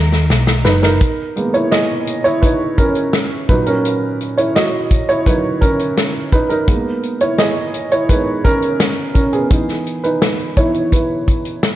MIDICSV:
0, 0, Header, 1, 5, 480
1, 0, Start_track
1, 0, Key_signature, 5, "minor"
1, 0, Tempo, 707547
1, 687, Time_signature, 4, 2, 24, 8
1, 7975, End_track
2, 0, Start_track
2, 0, Title_t, "Upright piano"
2, 0, Program_c, 0, 0
2, 0, Control_c, 0, 64, 127
2, 0, Note_on_c, 0, 56, 46
2, 0, Note_on_c, 0, 59, 45
2, 0, Note_on_c, 0, 63, 50
2, 438, Note_on_c, 0, 71, 70
2, 451, Note_off_c, 0, 63, 0
2, 451, Note_on_c, 0, 63, 61
2, 472, Note_off_c, 0, 71, 0
2, 485, Note_off_c, 0, 63, 0
2, 560, Note_on_c, 0, 70, 71
2, 571, Note_on_c, 0, 63, 56
2, 696, Control_c, 0, 64, 0
2, 698, Note_off_c, 0, 56, 0
2, 701, Note_off_c, 0, 59, 0
2, 801, Control_c, 0, 64, 127
2, 923, Note_on_c, 0, 56, 48
2, 926, Note_on_c, 0, 58, 45
2, 931, Note_on_c, 0, 59, 49
2, 1022, Note_off_c, 0, 63, 0
2, 1044, Note_on_c, 0, 73, 67
2, 1054, Note_on_c, 0, 64, 52
2, 1058, Note_off_c, 0, 70, 0
2, 1078, Note_off_c, 0, 73, 0
2, 1088, Note_off_c, 0, 64, 0
2, 1163, Note_on_c, 0, 75, 82
2, 1175, Note_on_c, 0, 68, 63
2, 1507, Note_off_c, 0, 68, 0
2, 1521, Note_on_c, 0, 73, 76
2, 1530, Note_on_c, 0, 64, 62
2, 1537, Note_off_c, 0, 75, 0
2, 1619, Note_off_c, 0, 56, 0
2, 1620, Note_off_c, 0, 58, 0
2, 1623, Note_off_c, 0, 59, 0
2, 1640, Note_on_c, 0, 71, 65
2, 1641, Note_off_c, 0, 64, 0
2, 1648, Note_off_c, 0, 73, 0
2, 1649, Note_on_c, 0, 63, 53
2, 1872, Note_off_c, 0, 63, 0
2, 1885, Note_on_c, 0, 70, 73
2, 1891, Note_off_c, 0, 71, 0
2, 1893, Note_on_c, 0, 61, 56
2, 2344, Note_off_c, 0, 61, 0
2, 2367, Note_on_c, 0, 54, 46
2, 2367, Note_on_c, 0, 71, 77
2, 2370, Note_on_c, 0, 46, 42
2, 2373, Note_on_c, 0, 63, 54
2, 2378, Control_c, 0, 64, 0
2, 2382, Note_off_c, 0, 70, 0
2, 2485, Note_off_c, 0, 63, 0
2, 2487, Note_on_c, 0, 70, 69
2, 2492, Note_off_c, 0, 71, 0
2, 2495, Note_on_c, 0, 61, 61
2, 2501, Control_c, 0, 64, 127
2, 2945, Note_off_c, 0, 61, 0
2, 2968, Note_on_c, 0, 73, 66
2, 2976, Note_on_c, 0, 64, 50
2, 2983, Note_off_c, 0, 70, 0
2, 3084, Note_off_c, 0, 64, 0
2, 3090, Note_on_c, 0, 75, 76
2, 3092, Note_off_c, 0, 73, 0
2, 3099, Note_on_c, 0, 66, 58
2, 3425, Note_off_c, 0, 75, 0
2, 3429, Note_off_c, 0, 66, 0
2, 3451, Note_on_c, 0, 73, 75
2, 3460, Note_on_c, 0, 64, 55
2, 3559, Note_off_c, 0, 54, 0
2, 3562, Note_off_c, 0, 73, 0
2, 3567, Note_off_c, 0, 64, 0
2, 3569, Note_on_c, 0, 54, 38
2, 3571, Note_on_c, 0, 71, 67
2, 3574, Note_on_c, 0, 70, 31
2, 3576, Note_on_c, 0, 63, 58
2, 3786, Note_off_c, 0, 54, 0
2, 3788, Note_off_c, 0, 70, 0
2, 3797, Note_off_c, 0, 63, 0
2, 3807, Note_on_c, 0, 70, 73
2, 3816, Note_on_c, 0, 61, 57
2, 3818, Note_off_c, 0, 71, 0
2, 4263, Note_off_c, 0, 46, 0
2, 4266, Note_off_c, 0, 61, 0
2, 4292, Note_on_c, 0, 71, 74
2, 4299, Note_on_c, 0, 63, 58
2, 4303, Note_off_c, 0, 70, 0
2, 4403, Note_off_c, 0, 63, 0
2, 4403, Note_off_c, 0, 71, 0
2, 4406, Note_on_c, 0, 70, 72
2, 4413, Note_on_c, 0, 63, 54
2, 4526, Note_on_c, 0, 56, 44
2, 4530, Note_on_c, 0, 58, 44
2, 4535, Note_on_c, 0, 59, 54
2, 4539, Control_c, 0, 64, 0
2, 4648, Control_c, 0, 64, 127
2, 4865, Note_off_c, 0, 63, 0
2, 4891, Note_on_c, 0, 73, 69
2, 4900, Note_on_c, 0, 64, 51
2, 4903, Note_off_c, 0, 70, 0
2, 4925, Note_off_c, 0, 73, 0
2, 4934, Note_off_c, 0, 64, 0
2, 5010, Note_on_c, 0, 75, 79
2, 5018, Note_on_c, 0, 68, 64
2, 5221, Note_off_c, 0, 56, 0
2, 5223, Note_off_c, 0, 58, 0
2, 5226, Note_off_c, 0, 59, 0
2, 5349, Note_off_c, 0, 68, 0
2, 5372, Note_on_c, 0, 73, 76
2, 5381, Note_off_c, 0, 75, 0
2, 5381, Note_on_c, 0, 64, 52
2, 5488, Note_off_c, 0, 64, 0
2, 5489, Note_on_c, 0, 56, 38
2, 5490, Note_on_c, 0, 70, 33
2, 5490, Note_on_c, 0, 71, 68
2, 5494, Note_on_c, 0, 59, 41
2, 5495, Note_off_c, 0, 73, 0
2, 5497, Note_on_c, 0, 63, 53
2, 5544, Note_off_c, 0, 71, 0
2, 5550, Note_off_c, 0, 63, 0
2, 5706, Note_off_c, 0, 56, 0
2, 5707, Note_off_c, 0, 70, 0
2, 5709, Note_off_c, 0, 59, 0
2, 5729, Note_on_c, 0, 70, 86
2, 5737, Note_on_c, 0, 61, 59
2, 6187, Note_off_c, 0, 61, 0
2, 6194, Note_off_c, 0, 70, 0
2, 6204, Note_on_c, 0, 70, 66
2, 6213, Note_on_c, 0, 61, 54
2, 6319, Note_off_c, 0, 70, 0
2, 6323, Note_off_c, 0, 61, 0
2, 6328, Note_on_c, 0, 68, 61
2, 6339, Note_on_c, 0, 59, 49
2, 6444, Note_off_c, 0, 59, 0
2, 6450, Note_on_c, 0, 52, 42
2, 6454, Note_on_c, 0, 59, 43
2, 6458, Note_on_c, 0, 63, 48
2, 6460, Control_c, 0, 64, 0
2, 6567, Control_c, 0, 64, 127
2, 6770, Note_off_c, 0, 52, 0
2, 6772, Note_off_c, 0, 59, 0
2, 6774, Note_off_c, 0, 63, 0
2, 6809, Note_on_c, 0, 71, 64
2, 6818, Note_on_c, 0, 63, 51
2, 6824, Note_off_c, 0, 68, 0
2, 7149, Note_off_c, 0, 63, 0
2, 7172, Note_on_c, 0, 73, 64
2, 7176, Note_on_c, 0, 52, 40
2, 7176, Note_on_c, 0, 59, 35
2, 7179, Note_on_c, 0, 63, 42
2, 7181, Note_off_c, 0, 71, 0
2, 7182, Note_on_c, 0, 64, 54
2, 7390, Note_off_c, 0, 52, 0
2, 7390, Note_off_c, 0, 59, 0
2, 7392, Note_off_c, 0, 63, 0
2, 7400, Note_off_c, 0, 64, 0
2, 7410, Note_on_c, 0, 71, 57
2, 7419, Note_off_c, 0, 73, 0
2, 7420, Note_on_c, 0, 64, 42
2, 7975, Note_off_c, 0, 64, 0
2, 7975, Note_off_c, 0, 71, 0
2, 7975, End_track
3, 0, Start_track
3, 0, Title_t, "String section"
3, 0, Program_c, 1, 48
3, 0, Note_on_c, 1, 47, 65
3, 0, Note_on_c, 1, 51, 58
3, 0, Note_on_c, 1, 56, 57
3, 0, Note_on_c, 1, 63, 62
3, 0, Note_on_c, 1, 70, 64
3, 664, Note_off_c, 1, 47, 0
3, 664, Note_off_c, 1, 56, 0
3, 664, Note_off_c, 1, 63, 0
3, 666, Note_off_c, 1, 51, 0
3, 669, Note_off_c, 1, 70, 0
3, 7975, End_track
4, 0, Start_track
4, 0, Title_t, "Fingered electric bass"
4, 0, Program_c, 2, 33
4, 0, Note_on_c, 2, 39, 73
4, 191, Note_off_c, 2, 39, 0
4, 204, Note_on_c, 2, 35, 70
4, 429, Note_off_c, 2, 35, 0
4, 445, Note_on_c, 2, 30, 69
4, 669, Note_off_c, 2, 30, 0
4, 7975, End_track
5, 0, Start_track
5, 0, Title_t, "Drums"
5, 84, Note_on_c, 9, 38, 46
5, 152, Note_off_c, 9, 38, 0
5, 205, Note_on_c, 9, 38, 61
5, 272, Note_off_c, 9, 38, 0
5, 320, Note_on_c, 9, 38, 66
5, 388, Note_off_c, 9, 38, 0
5, 441, Note_on_c, 9, 38, 73
5, 509, Note_off_c, 9, 38, 0
5, 563, Note_on_c, 9, 38, 61
5, 631, Note_off_c, 9, 38, 0
5, 683, Note_on_c, 9, 42, 79
5, 686, Note_on_c, 9, 36, 94
5, 751, Note_off_c, 9, 42, 0
5, 753, Note_off_c, 9, 36, 0
5, 928, Note_on_c, 9, 42, 52
5, 995, Note_off_c, 9, 42, 0
5, 1046, Note_on_c, 9, 42, 43
5, 1114, Note_off_c, 9, 42, 0
5, 1165, Note_on_c, 9, 42, 57
5, 1167, Note_on_c, 9, 38, 73
5, 1233, Note_off_c, 9, 42, 0
5, 1235, Note_off_c, 9, 38, 0
5, 1406, Note_on_c, 9, 42, 63
5, 1473, Note_off_c, 9, 42, 0
5, 1526, Note_on_c, 9, 42, 38
5, 1594, Note_off_c, 9, 42, 0
5, 1647, Note_on_c, 9, 36, 72
5, 1650, Note_on_c, 9, 42, 69
5, 1714, Note_off_c, 9, 36, 0
5, 1718, Note_off_c, 9, 42, 0
5, 1887, Note_on_c, 9, 36, 70
5, 1888, Note_on_c, 9, 42, 56
5, 1955, Note_off_c, 9, 36, 0
5, 1955, Note_off_c, 9, 42, 0
5, 2002, Note_on_c, 9, 42, 44
5, 2070, Note_off_c, 9, 42, 0
5, 2125, Note_on_c, 9, 38, 78
5, 2125, Note_on_c, 9, 42, 58
5, 2193, Note_off_c, 9, 38, 0
5, 2193, Note_off_c, 9, 42, 0
5, 2367, Note_on_c, 9, 42, 58
5, 2368, Note_on_c, 9, 36, 82
5, 2434, Note_off_c, 9, 42, 0
5, 2436, Note_off_c, 9, 36, 0
5, 2486, Note_on_c, 9, 42, 38
5, 2553, Note_off_c, 9, 42, 0
5, 2612, Note_on_c, 9, 42, 71
5, 2679, Note_off_c, 9, 42, 0
5, 2854, Note_on_c, 9, 42, 48
5, 2922, Note_off_c, 9, 42, 0
5, 2971, Note_on_c, 9, 42, 43
5, 3039, Note_off_c, 9, 42, 0
5, 3093, Note_on_c, 9, 42, 66
5, 3095, Note_on_c, 9, 38, 78
5, 3161, Note_off_c, 9, 42, 0
5, 3163, Note_off_c, 9, 38, 0
5, 3330, Note_on_c, 9, 36, 77
5, 3331, Note_on_c, 9, 42, 60
5, 3398, Note_off_c, 9, 36, 0
5, 3399, Note_off_c, 9, 42, 0
5, 3452, Note_on_c, 9, 42, 40
5, 3520, Note_off_c, 9, 42, 0
5, 3571, Note_on_c, 9, 36, 69
5, 3575, Note_on_c, 9, 42, 77
5, 3639, Note_off_c, 9, 36, 0
5, 3643, Note_off_c, 9, 42, 0
5, 3811, Note_on_c, 9, 36, 65
5, 3815, Note_on_c, 9, 42, 56
5, 3879, Note_off_c, 9, 36, 0
5, 3882, Note_off_c, 9, 42, 0
5, 3931, Note_on_c, 9, 42, 49
5, 3998, Note_off_c, 9, 42, 0
5, 4053, Note_on_c, 9, 42, 64
5, 4054, Note_on_c, 9, 38, 72
5, 4121, Note_off_c, 9, 38, 0
5, 4121, Note_off_c, 9, 42, 0
5, 4291, Note_on_c, 9, 36, 76
5, 4291, Note_on_c, 9, 42, 52
5, 4358, Note_off_c, 9, 36, 0
5, 4359, Note_off_c, 9, 42, 0
5, 4411, Note_on_c, 9, 42, 38
5, 4479, Note_off_c, 9, 42, 0
5, 4530, Note_on_c, 9, 42, 69
5, 4531, Note_on_c, 9, 36, 96
5, 4597, Note_off_c, 9, 42, 0
5, 4599, Note_off_c, 9, 36, 0
5, 4771, Note_on_c, 9, 42, 49
5, 4839, Note_off_c, 9, 42, 0
5, 4888, Note_on_c, 9, 42, 47
5, 4956, Note_off_c, 9, 42, 0
5, 5008, Note_on_c, 9, 42, 63
5, 5010, Note_on_c, 9, 38, 74
5, 5076, Note_off_c, 9, 42, 0
5, 5077, Note_off_c, 9, 38, 0
5, 5250, Note_on_c, 9, 42, 56
5, 5318, Note_off_c, 9, 42, 0
5, 5369, Note_on_c, 9, 42, 43
5, 5437, Note_off_c, 9, 42, 0
5, 5490, Note_on_c, 9, 36, 71
5, 5492, Note_on_c, 9, 42, 74
5, 5558, Note_off_c, 9, 36, 0
5, 5560, Note_off_c, 9, 42, 0
5, 5731, Note_on_c, 9, 36, 72
5, 5734, Note_on_c, 9, 42, 53
5, 5799, Note_off_c, 9, 36, 0
5, 5802, Note_off_c, 9, 42, 0
5, 5848, Note_on_c, 9, 42, 49
5, 5916, Note_off_c, 9, 42, 0
5, 5969, Note_on_c, 9, 42, 62
5, 5970, Note_on_c, 9, 38, 83
5, 6037, Note_off_c, 9, 38, 0
5, 6037, Note_off_c, 9, 42, 0
5, 6208, Note_on_c, 9, 42, 56
5, 6209, Note_on_c, 9, 36, 72
5, 6276, Note_off_c, 9, 42, 0
5, 6277, Note_off_c, 9, 36, 0
5, 6328, Note_on_c, 9, 42, 37
5, 6395, Note_off_c, 9, 42, 0
5, 6448, Note_on_c, 9, 42, 76
5, 6450, Note_on_c, 9, 36, 97
5, 6516, Note_off_c, 9, 42, 0
5, 6518, Note_off_c, 9, 36, 0
5, 6572, Note_on_c, 9, 38, 25
5, 6574, Note_on_c, 9, 42, 28
5, 6640, Note_off_c, 9, 38, 0
5, 6642, Note_off_c, 9, 42, 0
5, 6693, Note_on_c, 9, 42, 52
5, 6761, Note_off_c, 9, 42, 0
5, 6812, Note_on_c, 9, 42, 42
5, 6879, Note_off_c, 9, 42, 0
5, 6931, Note_on_c, 9, 42, 63
5, 6932, Note_on_c, 9, 38, 84
5, 6998, Note_off_c, 9, 42, 0
5, 7000, Note_off_c, 9, 38, 0
5, 7050, Note_on_c, 9, 42, 29
5, 7118, Note_off_c, 9, 42, 0
5, 7170, Note_on_c, 9, 36, 71
5, 7170, Note_on_c, 9, 42, 57
5, 7238, Note_off_c, 9, 36, 0
5, 7238, Note_off_c, 9, 42, 0
5, 7289, Note_on_c, 9, 42, 41
5, 7356, Note_off_c, 9, 42, 0
5, 7411, Note_on_c, 9, 36, 74
5, 7411, Note_on_c, 9, 42, 69
5, 7478, Note_off_c, 9, 36, 0
5, 7479, Note_off_c, 9, 42, 0
5, 7651, Note_on_c, 9, 36, 69
5, 7653, Note_on_c, 9, 42, 58
5, 7719, Note_off_c, 9, 36, 0
5, 7721, Note_off_c, 9, 42, 0
5, 7768, Note_on_c, 9, 42, 49
5, 7836, Note_off_c, 9, 42, 0
5, 7889, Note_on_c, 9, 42, 65
5, 7890, Note_on_c, 9, 38, 83
5, 7957, Note_off_c, 9, 42, 0
5, 7958, Note_off_c, 9, 38, 0
5, 7975, End_track
0, 0, End_of_file